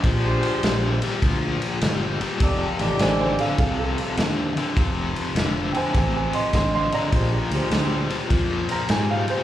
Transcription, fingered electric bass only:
X:1
M:4/4
L:1/8
Q:"Swing" 1/4=102
K:Fmix
V:1 name="Fingered electric bass" clef=bass
B,,,2 B,,,2 D,,2 G,,,2 | F,,, A,,, A,,,2 C,,2 E,,2 | F,,,2 F,,,2 A,,,2 A,,,2 | B,,, D,, D,,2 F,,2 _A,,2 |]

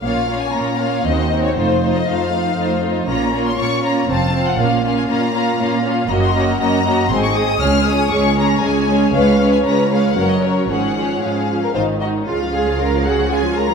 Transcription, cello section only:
X:1
M:3/4
L:1/8
Q:1/4=118
K:Bbm
V:1 name="Cello section" clef=bass
B,,2 B,,2 E,,2 | F,,2 F,,2 F,,2 | B,,2 B,,2 F,,2 | B,,2 B,,2 B,,2 |
[K:Db] G,,2 G,,2 A,,2 | D,,2 D,,2 D,,2 | D,,2 D,,2 G,,2 | A,,2 A,,2 A,,2 |
F A B A F2 |]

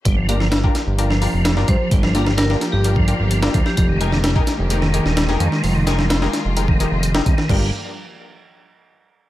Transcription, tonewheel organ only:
X:1
M:4/4
L:1/16
Q:1/4=129
K:Gphr
V:1 name="Tonewheel organ" clef=bass
G, F, B, F, D z4 F,4 z F,2 | G, F, B, F, D z4 F,4 z F,2 | F, E, A, E, C z4 E,4 z E,2 | F, E, A, E, C z4 E,4 z E,2 |
G,2 z12 z2 |]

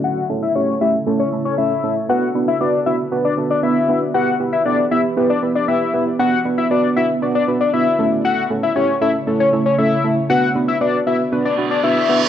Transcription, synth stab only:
X:1
M:4/4
L:1/8
Q:1/4=117
K:Bm
V:1 name="Synth stab"
[A,CEA] [A,CEA] [A,CEG] [A,CEG] [A,CEA] [A,CEA] [A,CEA] [A,CEA] | [B,DFB] [B,DFB] [B,DFB] [B,DFB] [B,DFB] [B,DFA] [B,DFB] [B,DFB] | [B,EGB] [B,EGB] [B,EGA] [B,EGB] [B,EGB] [B,EGB] [B,EGB] [B,EGB] | [B,DFB] [B,DFB] [B,DFB] [B,DFB] [B,DFd] [B,DFB] [B,DFB] [A,CEA]- |
[A,CEA] [A,CEA] [A,CEG] [A,CEA] [A,CEA] [A,CEA] [A,CEA] [A,CEA] | [B,DFB] [B,DFB] [B,DFB] [B,DFB] [B,DFB] [B,DFB] [B,DFB] [B,DFB] |]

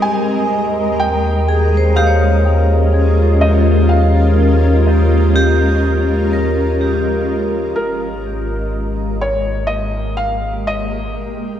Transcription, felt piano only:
X:1
M:4/4
L:1/8
Q:1/4=62
K:Ebmix
V:1 name="Felt piano"
a2 g2 f3 e | f6- f z | B3 d e f e2 |]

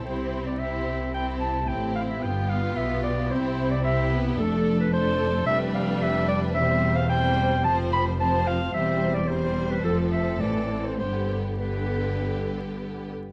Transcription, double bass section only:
X:1
M:4/4
L:1/8
Q:1/4=110
K:C
V:1 name="Double bass section" clef=bass
C,,6 A,,,2 | G,,,2 B,,,2 C,,4 | F,,,4 F,,,4 | E,,,4 F,,,4 |
E,,,4 F,,,2 A,,,2 | G,,,6- G,,, z |]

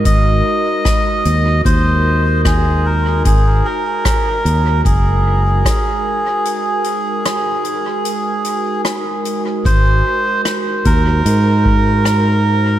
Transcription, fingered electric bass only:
X:1
M:4/4
L:1/8
Q:"Swing 16ths" 1/4=75
K:Abmix
V:1 name="Fingered electric bass" clef=bass
A,,, z2 E,, E,,4 | A,,, z2 E,, G,,,2 z2 | z8 | A,,, z2 E,, A,,4 |]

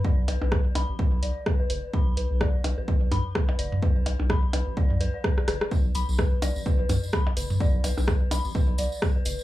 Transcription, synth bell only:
X:1
M:4/4
L:1/16
Q:"Swing 16ths" 1/4=127
K:Bm
V:1 name="Synth bell"
d z B B B z b z B z d z B B B z | b z B z d z B B B z b z B z d z | B B B z b z B z d z B d B z B z | B z b z B z d z B B B z b z B z |
d z B B B z b z B z d z B B B z |]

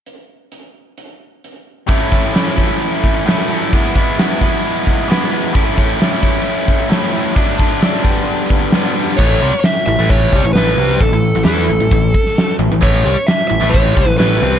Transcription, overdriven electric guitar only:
X:1
M:4/4
L:1/16
Q:1/4=132
K:Amix
V:1 name="Overdriven electric guitar" clef=bass
z16 | [A,,E,A,CE]2 [A,CE]2 [E,A,CE]2 [A,CE]6 [A,,E,A,CE]2 [A,CE]2 | [E,^G,B,E]2 [G,B,E]2 [E,G,B,E]2 [G,B,E]6 [E,G,B,E]2 [G,B,E]2 | [A,,E,A,CE]2 [A,CE]2 [E,A,CE]2 [A,CE]6 [A,,E,A,CE]2 [A,CE]2 |
[D,F,A,D]2 [F,A,D]2 [D,F,A,D]2 [G,,D,G,B,D]6 [G,,D,G,B,D]2 [G,B,D]2 | [A,,E,A,]2 [=C,G,] z3 [A,,E,] [A,,E,A,]3 [C,G,] [A,,E,] [A,,E,A,]2 [C,G,=C]2 | [A,,E,] [A,,E,]2 [A,,E,] [E,B,E]2 [A,,E,] [A,,E,] [A,,E,]2 z4 [A,,E,] [A,,E,] | [A,,E,A,]2 [=C,G,] z3 [A,,E,] [A,,E,A,]3 [C,G,] [A,,E,] [A,,E,A,]2 [C,G,=C]2 |]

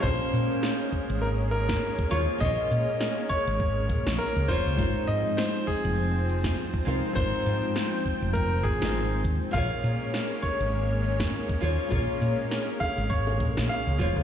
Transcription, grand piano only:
X:1
M:4/4
L:1/16
Q:"Swing 16ths" 1/4=101
K:Bbdor
V:1 name="Grand piano"
c8 B2 B4 d2 | e6 d6 B2 c2- | c2 e2 c2 A6 z4 | c8 B2 A4 z2 |
f6 d8 z2 | z6 f2 d4 f3 z |]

